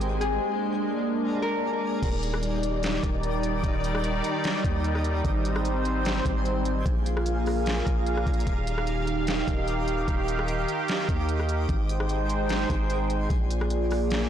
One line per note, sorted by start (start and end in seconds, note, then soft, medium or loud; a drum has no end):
0.00 0.39 G#1 loud
0.00 0.40 G#3 medium
0.00 2.00 G#3 medium
0.00 0.40 C4 medium
0.00 0.38 G4 medium
0.00 0.40 G4 medium
0.00 1.42 A#4 medium
0.00 0.40 C5 medium
0.00 0.77 C5 loud
0.00 0.25 D5 medium
0.00 closed hi-hat medium
0.21 2.48 G#4 medium
0.21 closed hi-hat medium
0.42 2.01 A#3 medium
0.42 2.01 D4 medium
0.42 2.01 G#4 medium
0.42 2.01 D5 medium
1.42 3.54 A#4 medium
2.03 2.99 D#1 loud
2.03 5.21 D#3 medium
2.03 6.82 G3 medium
2.03 6.82 D#4 medium
2.03 5.22 D#4 medium
2.03 5.22 D5 medium
2.03 5.22 G5 medium
2.03 kick loud
2.03 closed hi-hat medium
2.03 crash loud
2.23 closed hi-hat medium
2.34 cross-stick loud
2.43 closed hi-hat medium
2.63 closed hi-hat medium
2.83 snare loud
2.83 closed hi-hat medium
3.03 3.61 D#1 loud
3.03 kick loud
3.03 closed hi-hat medium
3.23 closed hi-hat medium
3.43 closed hi-hat medium
3.64 4.22 D#1 loud
3.64 kick loud
3.64 closed hi-hat medium
3.84 closed hi-hat medium
3.95 cross-stick loud
4.04 closed hi-hat medium
4.24 closed hi-hat medium
4.44 snare loud
4.44 closed hi-hat medium
4.64 5.22 D#2 loud
4.64 kick loud
4.64 closed hi-hat medium
4.84 closed hi-hat medium
4.95 cross-stick medium
5.04 closed hi-hat medium
5.25 6.21 G#1 loud
5.25 6.84 G3 medium
5.25 6.84 C4 medium
5.25 6.84 C5 medium
5.25 6.84 C5 loud
5.25 6.84 G#5 medium
5.25 kick loud
5.25 closed hi-hat medium
5.45 closed hi-hat medium
5.56 cross-stick loud
5.65 closed hi-hat medium
5.85 closed hi-hat medium
6.05 snare loud
6.05 closed hi-hat medium
6.25 6.83 G#1 loud
6.25 kick medium
6.25 closed hi-hat medium
6.45 closed hi-hat medium
6.65 closed hi-hat medium
6.86 7.82 A#1 loud
6.86 8.45 A#3 medium
6.86 8.45 F4 medium
6.86 8.45 G#4 medium
6.86 8.45 D5 medium
6.86 11.65 F5 medium
6.86 8.45 A#5 medium
6.86 kick loud
6.86 closed hi-hat medium
7.06 closed hi-hat medium
7.17 cross-stick loud
7.26 closed hi-hat medium
7.46 cross-stick medium
7.46 open hi-hat medium
7.66 snare loud
7.66 closed hi-hat medium
7.87 8.25 A#1 loud
7.87 kick loud
7.87 closed hi-hat medium
8.06 closed hi-hat medium
8.17 cross-stick medium
8.27 8.46 A#1 loud
8.27 kick loud
8.27 closed hi-hat soft
8.33 closed hi-hat medium
8.40 closed hi-hat medium
8.47 9.44 D#1 loud
8.47 11.66 D#3 medium
8.47 11.66 D#4 medium
8.47 11.66 G4 medium
8.47 11.66 D#5 medium
8.47 11.66 D6 medium
8.47 kick loud
8.47 closed hi-hat medium
8.67 closed hi-hat medium
8.78 cross-stick loud
8.87 closed hi-hat medium
9.07 closed hi-hat medium
9.27 snare loud
9.27 closed hi-hat medium
9.48 10.06 D#1 loud
9.48 kick loud
9.48 closed hi-hat medium
9.68 closed hi-hat medium
9.88 closed hi-hat medium
10.08 10.66 D#1 loud
10.08 kick loud
10.08 closed hi-hat medium
10.28 closed hi-hat medium
10.39 cross-stick loud
10.48 closed hi-hat medium
10.68 closed hi-hat medium
10.88 snare loud
10.88 closed hi-hat medium
11.09 11.67 D#2 loud
11.09 kick loud
11.09 closed hi-hat medium
11.29 closed hi-hat medium
11.40 cross-stick medium
11.49 closed hi-hat medium
11.69 12.66 G#1 loud
11.69 13.29 G#3 medium
11.69 13.29 D#4 medium
11.69 13.29 G#4 medium
11.69 13.29 C5 loud
11.69 13.28 G5 medium
11.69 13.29 G5 medium
11.69 13.28 C6 medium
11.69 kick loud
11.69 closed hi-hat medium
11.89 closed hi-hat medium
12.00 cross-stick loud
12.09 closed hi-hat medium
12.29 closed hi-hat medium
12.49 snare loud
12.49 closed hi-hat medium
12.70 13.28 G#1 loud
12.70 kick loud
12.70 closed hi-hat medium
12.90 closed hi-hat medium
13.10 closed hi-hat medium
13.30 14.27 A#1 loud
13.30 14.29 A#3 medium
13.30 14.29 F4 medium
13.30 14.29 G#4 medium
13.30 14.29 A#4 medium
13.30 14.29 D5 medium
13.30 14.29 G#5 medium
13.30 14.29 D6 medium
13.30 kick loud
13.30 closed hi-hat medium
13.50 closed hi-hat medium
13.61 cross-stick loud
13.70 closed hi-hat medium
13.91 cross-stick medium
13.91 open hi-hat medium
14.10 snare loud
14.10 closed hi-hat medium